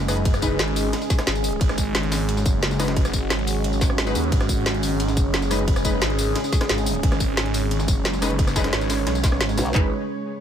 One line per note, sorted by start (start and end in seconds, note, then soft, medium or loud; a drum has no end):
0.00 0.58 F#1 medium
0.00 9.71 G#3 medium
0.00 9.71 C#4 medium
0.00 1.60 G#4 medium
0.08 0.18 G#3 medium
0.08 0.18 D#4 medium
0.08 0.18 B4 medium
0.08 cross-stick medium
0.08 closed hi-hat medium
0.08 open hi-hat medium
0.08 ride medium
0.08 tambourine medium
0.17 closed hi-hat soft
0.25 kick loud
0.25 closed hi-hat loud
0.25 closed hi-hat medium
0.25 ride medium
0.34 cross-stick medium
0.34 closed hi-hat soft
0.34 tambourine soft
0.42 2.78 G#3 medium
0.42 2.78 D#4 medium
0.42 2.78 B4 medium
0.42 kick medium
0.42 closed hi-hat medium
0.42 ride medium
0.42 tambourine medium
0.59 0.92 G#1 medium
0.59 snare loud
0.59 closed hi-hat medium
0.59 closed hi-hat loud
0.59 ride medium
0.68 closed hi-hat soft
0.76 closed hi-hat medium
0.76 open hi-hat medium
0.76 ride medium
0.76 tambourine medium
0.93 snare loud
0.93 closed hi-hat medium
0.93 closed hi-hat loud
0.93 ride medium
1.02 snare soft
1.02 tambourine soft
1.10 kick loud
1.10 snare soft
1.10 closed hi-hat medium
1.10 ride soft
1.10 tambourine medium
1.19 cross-stick medium
1.19 snare loud
1.19 closed hi-hat medium
1.27 1.60 G#1 loud
1.27 snare loud
1.27 closed hi-hat medium
1.27 ride medium
1.35 closed hi-hat soft
1.35 tambourine soft
1.44 closed hi-hat medium
1.44 open hi-hat medium
1.44 ride medium
1.44 tambourine medium
1.52 closed hi-hat soft
1.61 2.44 G#1 medium
1.61 4.31 F#4 medium
1.61 kick loud
1.61 closed hi-hat medium
1.61 ride medium
1.69 cross-stick medium
1.69 snare medium
1.69 closed hi-hat soft
1.78 kick medium
1.78 closed hi-hat medium
1.78 open hi-hat medium
1.78 ride medium
1.78 tambourine medium
1.95 snare loud
1.95 closed hi-hat loud
1.95 closed hi-hat medium
1.95 ride medium
2.03 closed hi-hat soft
2.12 snare loud
2.12 closed hi-hat medium
2.12 open hi-hat medium
2.12 ride medium
2.12 tambourine medium
2.29 closed hi-hat medium
2.29 closed hi-hat loud
2.29 ride medium
2.37 snare medium
2.37 tambourine soft
2.46 3.29 F#1 loud
2.46 kick loud
2.46 closed hi-hat medium
2.46 ride soft
2.46 tambourine medium
2.63 snare loud
2.63 closed hi-hat medium
2.63 ride medium
2.71 snare medium
2.71 closed hi-hat soft
2.71 tambourine soft
2.80 2.89 G#3 medium
2.80 2.89 D#4 medium
2.80 2.89 B4 medium
2.80 cross-stick medium
2.80 snare loud
2.80 closed hi-hat medium
2.80 open hi-hat medium
2.80 ride medium
2.80 tambourine medium
2.88 snare loud
2.88 closed hi-hat medium
2.88 closed hi-hat soft
2.96 kick loud
2.96 closed hi-hat medium
2.96 ride medium
3.05 cross-stick medium
3.05 closed hi-hat soft
3.05 tambourine soft
3.13 kick medium
3.13 closed hi-hat medium
3.13 ride medium
3.13 tambourine medium
3.30 3.63 G#1 medium
3.30 snare loud
3.30 closed hi-hat medium
3.30 ride medium
3.39 closed hi-hat soft
3.47 closed hi-hat medium
3.47 open hi-hat medium
3.47 ride medium
3.47 tambourine medium
3.64 4.14 G#1 medium
3.64 closed hi-hat medium
3.64 ride medium
3.73 tambourine soft
3.81 kick loud
3.81 snare soft
3.81 closed hi-hat medium
3.81 ride medium
3.81 tambourine medium
3.90 cross-stick medium
3.98 snare loud
3.98 closed hi-hat medium
3.98 ride medium
4.07 4.16 G#3 medium
4.07 4.16 D#4 medium
4.07 4.16 B4 loud
4.07 snare medium
4.07 closed hi-hat soft
4.07 tambourine soft
4.15 4.31 D#2 loud
4.15 closed hi-hat medium
4.15 open hi-hat medium
4.15 ride medium
4.15 tambourine medium
4.24 closed hi-hat soft
4.32 5.16 G#1 loud
4.32 7.02 G#4 medium
4.32 kick loud
4.32 closed hi-hat medium
4.32 ride medium
4.41 cross-stick medium
4.41 snare medium
4.41 closed hi-hat soft
4.49 kick medium
4.49 closed hi-hat medium
4.49 open hi-hat medium
4.49 ride medium
4.49 tambourine medium
4.66 snare loud
4.66 closed hi-hat medium
4.66 ride medium
4.75 closed hi-hat soft
4.83 closed hi-hat medium
4.83 open hi-hat medium
4.83 ride medium
4.83 tambourine medium
5.00 closed hi-hat medium
5.00 ride medium
5.08 snare medium
5.08 tambourine soft
5.17 6.00 F#1 loud
5.17 kick loud
5.17 closed hi-hat medium
5.17 ride medium
5.17 tambourine medium
5.34 snare loud
5.34 closed hi-hat medium
5.34 ride medium
5.42 snare medium
5.42 closed hi-hat soft
5.42 tambourine soft
5.51 5.60 G#3 medium
5.51 5.60 D#4 medium
5.51 5.60 B4 medium
5.51 cross-stick medium
5.51 closed hi-hat medium
5.51 open hi-hat medium
5.51 ride medium
5.51 tambourine medium
5.68 kick loud
5.68 closed hi-hat medium
5.68 ride medium
5.76 cross-stick medium
5.76 closed hi-hat soft
5.76 tambourine soft
5.85 8.20 G#3 medium
5.85 8.20 D#4 medium
5.85 8.20 B4 loud
5.85 kick medium
5.85 closed hi-hat medium
5.85 ride medium
5.85 tambourine medium
6.02 6.34 G#1 medium
6.02 snare loud
6.02 closed hi-hat medium
6.02 ride medium
6.10 closed hi-hat soft
6.19 closed hi-hat medium
6.19 open hi-hat medium
6.19 ride medium
6.19 tambourine medium
6.36 snare loud
6.36 closed hi-hat medium
6.36 ride medium
6.44 snare soft
6.44 tambourine soft
6.52 kick loud
6.52 snare soft
6.52 closed hi-hat medium
6.52 ride medium
6.52 tambourine medium
6.61 cross-stick medium
6.61 snare loud
6.61 closed hi-hat medium
6.69 7.02 G#1 loud
6.69 snare loud
6.69 closed hi-hat medium
6.69 ride medium
6.78 closed hi-hat soft
6.78 tambourine soft
6.86 closed hi-hat medium
6.86 open hi-hat medium
6.86 ride medium
6.86 tambourine medium
6.95 closed hi-hat soft
7.03 7.87 G#1 loud
7.03 9.73 C#5 medium
7.03 kick loud
7.03 closed hi-hat medium
7.03 closed hi-hat loud
7.03 ride medium
7.12 cross-stick medium
7.12 snare medium
7.12 closed hi-hat soft
7.20 kick medium
7.20 closed hi-hat medium
7.20 open hi-hat medium
7.20 ride medium
7.20 tambourine medium
7.37 snare loud
7.37 closed hi-hat medium
7.37 closed hi-hat loud
7.37 ride medium
7.46 closed hi-hat soft
7.54 closed hi-hat medium
7.54 open hi-hat medium
7.54 ride medium
7.54 tambourine medium
7.71 closed hi-hat medium
7.71 closed hi-hat loud
7.71 ride medium
7.80 snare medium
7.80 tambourine soft
7.88 8.71 F#1 loud
7.88 kick loud
7.88 closed hi-hat medium
7.88 ride medium
7.88 tambourine medium
8.05 snare loud
8.05 closed hi-hat medium
8.05 closed hi-hat loud
8.05 ride medium
8.13 snare medium
8.13 closed hi-hat soft
8.13 tambourine soft
8.22 8.31 G#3 medium
8.22 8.31 D#4 medium
8.22 8.31 B4 medium
8.22 cross-stick medium
8.22 snare loud
8.22 closed hi-hat medium
8.22 open hi-hat medium
8.22 ride medium
8.22 tambourine medium
8.30 closed hi-hat soft
8.39 kick loud
8.39 closed hi-hat medium
8.39 closed hi-hat loud
8.39 ride medium
8.47 cross-stick medium
8.47 snare soft
8.47 closed hi-hat soft
8.47 tambourine soft
8.56 9.73 G#3 medium
8.56 9.73 D#4 medium
8.56 9.73 B4 medium
8.56 kick medium
8.56 snare loud
8.56 closed hi-hat medium
8.56 ride medium
8.56 tambourine medium
8.64 snare loud
8.64 closed hi-hat medium
8.73 9.05 G#1 medium
8.73 snare loud
8.73 closed hi-hat medium
8.73 closed hi-hat loud
8.73 ride medium
8.81 closed hi-hat soft
8.81 tambourine soft
8.90 snare loud
8.90 closed hi-hat medium
8.90 open hi-hat medium
8.90 ride medium
8.90 tambourine medium
8.98 closed hi-hat soft
9.07 9.39 B1 loud
9.07 snare loud
9.07 closed hi-hat medium
9.07 ride medium
9.15 closed hi-hat soft
9.15 tambourine soft
9.24 kick loud
9.24 snare loud
9.24 snare soft
9.24 closed hi-hat medium
9.24 ride medium
9.24 tambourine medium
9.32 cross-stick medium
9.32 snare soft
9.41 9.56 G#1 medium
9.41 snare loud
9.41 closed hi-hat medium
9.41 closed hi-hat loud
9.41 ride medium
9.49 snare soft
9.49 closed hi-hat soft
9.49 tambourine soft
9.58 9.73 B1 medium
9.58 snare loud
9.58 closed hi-hat medium
9.58 open hi-hat medium
9.58 ride medium
9.58 tambourine medium
9.66 closed hi-hat soft
9.74 9.90 G#1 loud
9.74 9.87 G#3 medium
9.74 9.87 D#4 medium
9.74 9.87 B4 loud
9.74 kick loud
9.74 clap medium